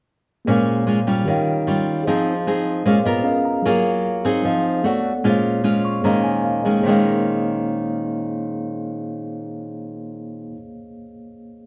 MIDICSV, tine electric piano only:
0, 0, Header, 1, 2, 480
1, 0, Start_track
1, 0, Key_signature, -5, "minor"
1, 0, Tempo, 398936
1, 566, Time_signature, 4, 2, 24, 8
1, 14034, End_track
2, 0, Start_track
2, 0, Title_t, "Tine electric piano"
2, 0, Program_c, 0, 4
2, 540, Note_on_c, 0, 58, 50
2, 555, Note_on_c, 0, 68, 40
2, 576, Note_on_c, 0, 72, 38
2, 591, Note_on_c, 0, 73, 42
2, 609, Note_on_c, 0, 77, 48
2, 769, Control_c, 0, 64, 127
2, 1490, Note_on_c, 0, 51, 49
2, 1493, Note_off_c, 0, 58, 0
2, 1501, Note_off_c, 0, 68, 0
2, 1507, Note_on_c, 0, 67, 44
2, 1512, Note_off_c, 0, 72, 0
2, 1519, Note_off_c, 0, 73, 0
2, 1524, Note_on_c, 0, 70, 45
2, 1529, Note_off_c, 0, 77, 0
2, 1540, Control_c, 0, 64, 0
2, 1545, Note_on_c, 0, 73, 47
2, 1568, Note_on_c, 0, 77, 53
2, 1748, Control_c, 0, 64, 127
2, 2443, Note_on_c, 0, 68, 48
2, 2447, Note_off_c, 0, 51, 0
2, 2456, Note_off_c, 0, 67, 0
2, 2465, Note_off_c, 0, 70, 0
2, 2469, Note_on_c, 0, 72, 40
2, 2475, Note_off_c, 0, 73, 0
2, 2487, Note_off_c, 0, 77, 0
2, 2491, Note_on_c, 0, 75, 48
2, 2500, Control_c, 0, 64, 0
2, 2516, Note_on_c, 0, 77, 50
2, 2716, Control_c, 0, 64, 127
2, 3402, Note_off_c, 0, 68, 0
2, 3415, Note_off_c, 0, 72, 0
2, 3427, Note_off_c, 0, 75, 0
2, 3436, Note_on_c, 0, 68, 41
2, 3436, Note_on_c, 0, 72, 44
2, 3440, Note_off_c, 0, 77, 0
2, 3454, Note_on_c, 0, 73, 47
2, 3458, Control_c, 0, 64, 0
2, 3461, Note_on_c, 0, 77, 55
2, 3630, Control_c, 0, 64, 127
2, 3665, Note_on_c, 0, 75, 54
2, 3882, Note_off_c, 0, 68, 0
2, 3889, Note_on_c, 0, 61, 51
2, 3894, Note_off_c, 0, 77, 0
2, 3896, Note_off_c, 0, 75, 0
2, 3896, Note_on_c, 0, 68, 43
2, 3904, Note_on_c, 0, 70, 52
2, 3909, Note_on_c, 0, 77, 63
2, 3918, Note_off_c, 0, 72, 0
2, 3924, Note_on_c, 0, 75, 46
2, 3927, Note_off_c, 0, 73, 0
2, 3939, Control_c, 0, 64, 0
2, 4113, Control_c, 0, 64, 127
2, 4155, Note_on_c, 0, 82, 45
2, 4357, Note_on_c, 0, 54, 50
2, 4363, Note_off_c, 0, 68, 0
2, 4378, Note_on_c, 0, 68, 45
2, 4380, Note_off_c, 0, 82, 0
2, 4383, Note_off_c, 0, 70, 0
2, 4384, Note_off_c, 0, 61, 0
2, 4397, Note_on_c, 0, 70, 46
2, 4402, Note_off_c, 0, 75, 0
2, 4403, Note_off_c, 0, 77, 0
2, 4410, Note_on_c, 0, 73, 44
2, 4414, Control_c, 0, 64, 0
2, 4437, Note_on_c, 0, 77, 55
2, 4645, Control_c, 0, 64, 127
2, 5317, Note_off_c, 0, 54, 0
2, 5327, Note_off_c, 0, 68, 0
2, 5337, Note_off_c, 0, 70, 0
2, 5341, Note_on_c, 0, 68, 50
2, 5343, Note_off_c, 0, 73, 0
2, 5346, Note_on_c, 0, 72, 44
2, 5357, Note_off_c, 0, 77, 0
2, 5367, Note_on_c, 0, 75, 43
2, 5370, Note_on_c, 0, 77, 60
2, 5375, Control_c, 0, 64, 0
2, 5547, Control_c, 0, 64, 127
2, 5818, Note_on_c, 0, 59, 52
2, 5828, Note_off_c, 0, 68, 0
2, 5829, Note_on_c, 0, 69, 47
2, 5830, Note_off_c, 0, 72, 0
2, 5841, Note_off_c, 0, 75, 0
2, 5843, Note_off_c, 0, 77, 0
2, 5845, Note_on_c, 0, 73, 44
2, 5851, Note_on_c, 0, 74, 46
2, 5852, Control_c, 0, 64, 0
2, 5852, Note_on_c, 0, 78, 63
2, 6027, Control_c, 0, 64, 127
2, 6303, Note_on_c, 0, 58, 49
2, 6306, Note_off_c, 0, 59, 0
2, 6312, Note_off_c, 0, 69, 0
2, 6315, Note_on_c, 0, 68, 45
2, 6319, Note_off_c, 0, 73, 0
2, 6322, Note_off_c, 0, 74, 0
2, 6323, Note_off_c, 0, 78, 0
2, 6329, Control_c, 0, 64, 0
2, 6338, Note_on_c, 0, 72, 49
2, 6356, Note_on_c, 0, 73, 43
2, 6375, Note_on_c, 0, 77, 51
2, 6537, Control_c, 0, 64, 127
2, 7037, Note_on_c, 0, 85, 49
2, 7226, Note_off_c, 0, 58, 0
2, 7238, Note_off_c, 0, 68, 0
2, 7240, Note_on_c, 0, 58, 50
2, 7253, Note_off_c, 0, 72, 0
2, 7253, Note_on_c, 0, 68, 44
2, 7258, Note_off_c, 0, 85, 0
2, 7267, Note_off_c, 0, 73, 0
2, 7268, Note_on_c, 0, 72, 43
2, 7278, Note_on_c, 0, 82, 50
2, 7282, Note_on_c, 0, 73, 43
2, 7284, Note_off_c, 0, 77, 0
2, 7289, Control_c, 0, 64, 0
2, 7298, Note_on_c, 0, 75, 47
2, 7310, Note_on_c, 0, 77, 56
2, 7481, Control_c, 0, 64, 127
2, 7498, Note_off_c, 0, 82, 0
2, 7506, Note_on_c, 0, 80, 55
2, 7732, Note_off_c, 0, 80, 0
2, 7744, Note_off_c, 0, 77, 0
2, 7758, Note_on_c, 0, 77, 49
2, 7968, Note_off_c, 0, 75, 0
2, 7978, Note_off_c, 0, 77, 0
2, 7983, Note_on_c, 0, 75, 49
2, 8150, Note_off_c, 0, 58, 0
2, 8165, Note_on_c, 0, 58, 53
2, 8184, Note_off_c, 0, 68, 0
2, 8199, Note_on_c, 0, 68, 48
2, 8210, Note_off_c, 0, 72, 0
2, 8210, Note_off_c, 0, 75, 0
2, 8217, Note_off_c, 0, 73, 0
2, 8222, Note_on_c, 0, 72, 48
2, 8248, Control_c, 0, 64, 0
2, 8257, Note_on_c, 0, 73, 44
2, 8279, Note_on_c, 0, 75, 46
2, 8313, Note_on_c, 0, 77, 55
2, 8466, Control_c, 0, 64, 127
2, 12581, Note_off_c, 0, 58, 0
2, 12615, Note_off_c, 0, 68, 0
2, 12638, Note_off_c, 0, 72, 0
2, 12674, Note_off_c, 0, 73, 0
2, 12695, Note_off_c, 0, 75, 0
2, 12729, Note_off_c, 0, 77, 0
2, 14034, End_track
0, 0, End_of_file